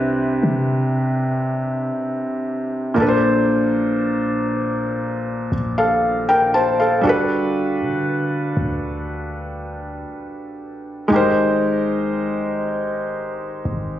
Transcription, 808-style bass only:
0.00 0.39 C2 loud
0.43 1.92 C3 loud
2.98 5.48 A#1 loud
5.52 7.00 A#1 loud
7.04 7.82 G1 loud
7.81 8.53 D3 medium
8.57 10.05 D2 loud
11.11 13.61 G#1 loud
13.65 14.00 G#1 loud

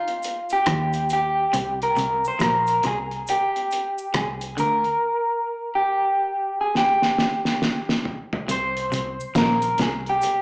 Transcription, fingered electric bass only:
0.67 1.45 D#2 medium
1.54 1.93 C2 loud
1.98 2.22 C2 medium
2.41 2.80 A#1 medium
2.85 3.24 C2 medium
4.15 4.54 C2 medium
4.59 4.83 D2 medium
8.49 8.88 C2 loud
8.92 9.17 C2 medium
9.35 9.74 A#1 medium
9.79 10.18 C2 loud

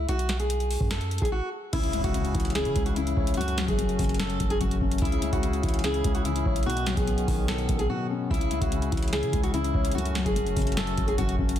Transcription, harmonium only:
1.73 3.36 C#3 medium
1.73 11.55 C#4 medium
1.73 3.36 E4 medium
1.73 3.36 G#4 medium
3.37 5.00 A3 medium
3.37 5.00 F#4 medium
5.02 6.64 C#3 medium
5.02 6.65 E4 medium
5.02 6.65 G#4 medium
6.66 8.29 D#3 medium
6.66 8.29 B3 medium
8.31 9.93 C#3 medium
8.31 9.93 E4 medium
8.31 9.93 G#4 medium
9.95 11.58 A3 medium
9.95 11.58 F#4 medium

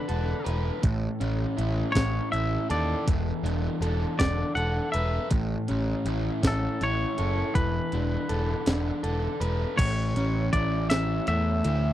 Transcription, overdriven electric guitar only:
0.00 2.09 E3 medium
0.00 0.84 D4 medium
0.00 0.09 A4 medium
0.09 1.57 A4 medium
0.45 0.83 B4 medium
0.82 2.70 A2 medium
1.20 1.94 C#4 medium
1.58 2.32 E4 medium
1.96 3.08 C#4 medium
2.32 3.47 E4 medium
2.70 3.82 A4 medium
3.07 6.57 E3 medium
3.44 4.18 D4 medium
3.82 4.55 A4 medium
4.19 5.31 D4 medium
4.56 6.07 A4 medium
4.94 5.31 B4 medium
5.30 7.17 A2 medium
5.68 6.42 C#4 medium
6.07 6.82 E4 medium
6.43 7.55 C#4 medium
6.82 7.96 E4 medium
7.18 8.29 A4 medium
7.55 9.41 E3 medium
7.93 8.66 D4 medium
8.29 9.02 A4 medium
8.67 9.79 D4 medium
9.03 9.78 A4 medium
9.40 9.78 B4 medium
9.77 11.64 A2 medium
10.17 10.89 C#4 medium
10.53 11.64 E4 medium
10.90 11.93 C#4 medium
11.28 11.93 A3 medium
11.65 11.93 E4 medium

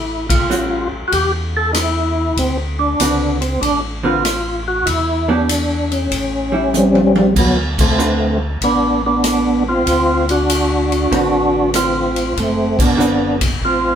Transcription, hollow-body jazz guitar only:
0.50 0.88 G3 soft
0.50 0.88 C#4 soft
0.50 0.88 F#4 medium
3.00 3.38 D3 medium
3.00 3.38 C4 medium
3.00 3.38 F#4 medium
3.00 3.38 B4 medium
4.03 4.22 D3 medium
4.03 4.22 C4 medium
4.03 4.22 F#4 medium
4.03 4.23 B4 medium
5.28 5.47 E3 medium
5.28 5.47 B3 medium
5.28 5.47 D4 medium
5.28 5.48 G4 medium
6.52 7.32 G3 medium
6.52 7.32 E4 medium
7.98 8.37 D3 medium
7.98 8.37 C4 soft
7.98 8.37 F#4 medium
7.98 8.37 B4 medium
11.12 12.08 D3 medium
11.12 12.08 C4 medium
11.12 12.08 F#4 medium
11.12 12.08 B4 medium
12.97 13.36 D3 medium
12.97 13.36 C4 medium
12.97 13.36 F#4 medium
12.97 13.37 B4 medium

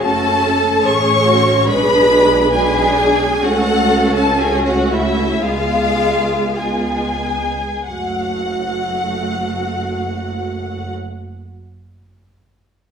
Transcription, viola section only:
0.05 0.84 A3 medium
0.05 0.83 C#4 medium
0.86 1.66 A3 medium
0.86 1.66 C#4 medium
1.67 2.51 G#3 medium
1.67 2.52 D4 medium
2.53 3.42 G#3 medium
2.53 3.42 D4 medium
3.44 5.40 A3 medium
3.44 5.44 C#4 medium
5.43 6.56 G#3 medium
5.43 6.57 B3 medium
6.57 7.52 G#3 medium
6.57 7.53 B3 medium
7.87 10.90 A3 medium
7.87 10.90 F#4 soft

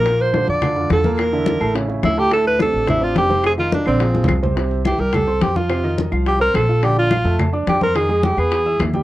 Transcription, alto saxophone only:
0.00 0.23 A#4 loud
0.21 0.49 C5 loud
0.50 0.88 D5 medium
0.93 1.13 A4 medium
1.13 1.22 A4 medium
1.21 1.76 A#4 medium
2.05 2.20 E4 medium
2.19 2.32 G4 loud
2.34 2.46 A4 loud
2.47 2.59 B4 loud
2.62 2.87 A4 loud
2.90 3.05 E4 loud
3.03 3.17 F4 medium
3.18 3.43 G4 medium
3.46 3.52 G#4 loud
3.60 3.72 F4 medium
3.74 3.87 D4 medium
3.87 4.39 C4 medium
4.87 5.01 G4 medium
5.00 5.16 A#4 loud
5.14 5.44 A4 medium
5.43 5.58 G4 medium
5.57 5.99 F4 medium
6.27 6.40 G4 medium
6.41 6.57 A#4 loud
6.56 6.86 A4 loud
6.85 6.98 G4 medium
6.99 7.37 F4 loud
7.69 7.82 G4 medium
7.83 7.98 A#4 loud
7.96 8.26 G#4 medium
8.25 8.41 G4 medium
8.39 8.81 G#4 loud

